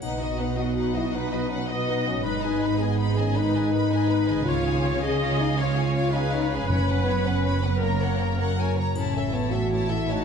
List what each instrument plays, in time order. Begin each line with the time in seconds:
Already playing: harp F#4
0.02 double bass section B1, harp B2, cello section B2, french horn section D#4, violin section D#4 B4 F#5, triangle
0.21 harp B3, violin section F#4 D#5
0.38 french horn section B3, harp D#4, violin section D#4 B4 F#5
0.57 french horn section F#4, harp F#4, violin section F#4 D#5
0.76 harp B3, violin section D#4 B4 F#5
0.95 harp F#3, french horn section E4, violin section F#4 D#5
1.12 harp B3, violin section D#4 B4 F#5, french horn section D#4, viola section B4
1.32 harp F#3, violin section F#4 D#5
1.50 french horn section C#4, violin section D#4 B4 F#5, harp D#4
1.68 french horn section B3, harp F#4, violin section F#4 D#5, viola section D#5
1.88 harp B3, violin section D#4 B4 F#5
2.06 harp F#3, french horn section C#4, violin section F#4 D#5
2.24 double bass section G#1, harp G#2, cello section G#2, french horn section D#4, violin section D#4 B4 B5, viola section B4
2.43 harp B3, french horn section D#4, violin section G#4 D#5 G#5
2.61 harp D#4, violin section D#4 B4 B5
2.79 french horn section B3, harp G#4, viola section G#4, violin section G#4 D#5 G#5
2.98 harp B3, violin section D#4 B4 B5
3.17 harp D#3, french horn section C#4, violin section G#4 D#5 G#5
3.35 harp B3, violin section D#4 B4 B5, french horn section D#4, viola section B4
3.54 harp D#3, violin section G#4 D#5 G#5
3.72 harp D#4, violin section D#4 B4 B5
3.91 harp G#4, violin section G#4 D#5 G#5, viola section B4
4.10 harp B3, violin section D#4 B4 B5
4.28 harp D#3, violin section G#4 D#5 G#5
4.45 double bass section C#2, harp C#3, cello section C#3, french horn section F4, violin section F4 C#5, viola section C#5
4.49 violin section F5
4.65 harp C#4, violin section G#4 F5 G#5
4.84 violin section F4 C#5 F5, harp G#4
5.02 harp C#4, violin section G#4 F5 G#5, french horn section G#4, viola section D#5
5.20 harp G#3, violin section F4 C#5 F5
5.40 harp C#4, french horn section D#4, violin section G#4 F5 G#5
5.57 harp G#3, french horn section F4, violin section F4 C#5 F5, viola section C#5
5.77 harp C#4, french horn section F4, violin section G#4 F5 G#5
5.95 violin section F4 C#5 F5, harp G#4
6.12 harp C#4, french horn section D#4, violin section G#4 F5 G#5, viola section B4
6.32 harp G#3, violin section F4 C#5 F5
6.50 french horn section C#4, harp C#4, violin section G#4 F5 G#5
6.66 harp F#2, timpani F#2, cello section F#2, french horn section C#4, violin section B5
6.70 double bass section F#1, violin section C#5
6.88 harp B3, violin section B4 F#5
7.04 french horn section B3, harp C#4, violin section C#5
7.10 violin section B5
7.25 french horn section C#4, harp F#4, violin section B4 F#5
7.44 harp B3, violin section C#5 B5
7.63 harp C#3, french horn section B3, violin section B4 F#5
7.80 harp F#2, french horn section A#3, viola section A#4, violin section A#4 C#5 A#5
8.00 harp C#4, violin section A#4 C#5 F#5
8.19 harp C#3, violin section A#4 C#5 A#5
8.39 harp F#4, violin section A#4 C#5 F#5
8.57 harp C#4, violin section A#4 C#5 G#5
8.76 harp C#3, violin section A#4 C#5 A#5
8.95 double bass section A1, harp A2, cello section A2, french horn section C#4, violin section E4 C#5, triangle
9.00 violin section A5
9.14 harp A3, violin section A4 E5
9.32 french horn section B3, harp C#4, violin section E4 C#5 A5
9.50 harp E4, french horn section F#4, violin section A4 E5
9.70 harp A3, violin section E4 C#5 A5
9.89 harp E3, french horn section E4, violin section A4 E5
10.08 harp A3, french horn section D#4, violin section E4 C#5 A5, viola section F#4